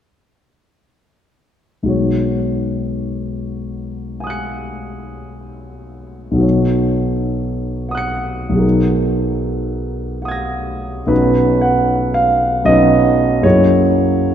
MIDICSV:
0, 0, Header, 1, 2, 480
1, 0, Start_track
1, 0, Key_signature, 5, "major"
1, 0, Tempo, 777202
1, 1184, Time_signature, 3, 2, 24, 8
1, 2136, Tempo, 742574
1, 5976, Tempo, 819672
1, 6456, Tempo, 879765
1, 6936, Tempo, 805369
1, 7416, Tempo, 768246
1, 8376, Tempo, 725514
1, 8974, End_track
2, 0, Start_track
2, 0, Title_t, "Grand piano"
2, 0, Program_c, 0, 0
2, 1128, Note_on_c, 0, 35, 27
2, 1128, Note_on_c, 0, 56, 22
2, 1133, Note_on_c, 0, 63, 26
2, 1146, Note_on_c, 0, 66, 24
2, 1163, Note_on_c, 0, 73, 23
2, 1289, Control_c, 0, 64, 127
2, 2618, Note_on_c, 0, 80, 25
2, 2640, Note_on_c, 0, 87, 24
2, 2659, Note_on_c, 0, 90, 23
2, 2680, Note_on_c, 0, 97, 24
2, 3970, Note_off_c, 0, 35, 0
2, 3979, Note_on_c, 0, 35, 38
2, 3994, Note_on_c, 0, 54, 30
2, 4002, Note_off_c, 0, 63, 0
2, 4011, Note_off_c, 0, 56, 0
2, 4012, Note_on_c, 0, 63, 31
2, 4014, Note_off_c, 0, 66, 0
2, 4022, Note_off_c, 0, 73, 0
2, 4024, Note_on_c, 0, 66, 30
2, 4031, Note_off_c, 0, 80, 0
2, 4042, Note_off_c, 0, 87, 0
2, 4043, Note_on_c, 0, 73, 30
2, 4052, Note_off_c, 0, 90, 0
2, 4062, Note_off_c, 0, 97, 0
2, 4072, Control_c, 0, 64, 0
2, 4186, Control_c, 0, 64, 127
2, 4998, Note_on_c, 0, 78, 27
2, 5015, Note_on_c, 0, 87, 34
2, 5038, Note_on_c, 0, 90, 31
2, 5055, Note_on_c, 0, 97, 32
2, 5378, Note_off_c, 0, 35, 0
2, 5388, Note_on_c, 0, 35, 36
2, 5393, Note_off_c, 0, 54, 0
2, 5402, Note_on_c, 0, 54, 29
2, 5405, Note_off_c, 0, 63, 0
2, 5415, Note_on_c, 0, 63, 33
2, 5431, Note_on_c, 0, 68, 32
2, 5439, Note_off_c, 0, 66, 0
2, 5449, Note_off_c, 0, 73, 0
2, 5451, Note_on_c, 0, 70, 30
2, 5454, Note_off_c, 0, 78, 0
2, 5463, Note_off_c, 0, 87, 0
2, 5474, Note_off_c, 0, 90, 0
2, 5483, Note_off_c, 0, 97, 0
2, 5494, Control_c, 0, 64, 0
2, 5579, Control_c, 0, 64, 127
2, 6456, Note_on_c, 0, 78, 24
2, 6474, Note_on_c, 0, 87, 26
2, 6492, Note_on_c, 0, 92, 25
2, 6508, Note_on_c, 0, 94, 24
2, 6876, Note_off_c, 0, 35, 0
2, 6882, Note_off_c, 0, 54, 0
2, 6887, Note_off_c, 0, 63, 0
2, 6894, Note_off_c, 0, 68, 0
2, 6903, Note_off_c, 0, 70, 0
2, 6915, Note_off_c, 0, 78, 0
2, 6916, Note_on_c, 0, 35, 30
2, 6921, Note_on_c, 0, 54, 26
2, 6924, Note_off_c, 0, 87, 0
2, 6925, Note_on_c, 0, 61, 22
2, 6925, Note_on_c, 0, 71, 47
2, 6927, Note_on_c, 0, 63, 24
2, 6933, Note_off_c, 0, 92, 0
2, 6942, Note_off_c, 0, 94, 0
2, 6950, Control_c, 0, 64, 0
2, 7068, Control_c, 0, 64, 127
2, 7244, Note_on_c, 0, 78, 56
2, 7252, Note_off_c, 0, 71, 0
2, 7565, Note_on_c, 0, 77, 61
2, 7574, Note_off_c, 0, 78, 0
2, 7867, Note_off_c, 0, 35, 0
2, 7870, Note_off_c, 0, 54, 0
2, 7872, Note_off_c, 0, 61, 0
2, 7874, Note_off_c, 0, 63, 0
2, 7877, Note_on_c, 0, 35, 32
2, 7882, Note_on_c, 0, 54, 27
2, 7885, Note_on_c, 0, 75, 69
2, 7887, Note_on_c, 0, 61, 30
2, 7896, Note_off_c, 0, 77, 0
2, 7896, Note_on_c, 0, 63, 27
2, 7899, Note_on_c, 0, 71, 27
2, 8349, Note_off_c, 0, 35, 0
2, 8352, Note_off_c, 0, 54, 0
2, 8354, Note_off_c, 0, 61, 0
2, 8359, Note_off_c, 0, 63, 0
2, 8360, Note_on_c, 0, 42, 33
2, 8361, Note_off_c, 0, 71, 0
2, 8365, Note_on_c, 0, 54, 26
2, 8367, Note_on_c, 0, 58, 24
2, 8368, Note_off_c, 0, 75, 0
2, 8371, Note_on_c, 0, 64, 26
2, 8371, Note_on_c, 0, 73, 62
2, 8376, Note_on_c, 0, 68, 26
2, 8387, Control_c, 0, 64, 0
2, 8491, Control_c, 0, 64, 127
2, 8974, Note_off_c, 0, 42, 0
2, 8974, Note_off_c, 0, 54, 0
2, 8974, Note_off_c, 0, 58, 0
2, 8974, Note_off_c, 0, 64, 0
2, 8974, Note_off_c, 0, 68, 0
2, 8974, Note_off_c, 0, 73, 0
2, 8974, End_track
0, 0, End_of_file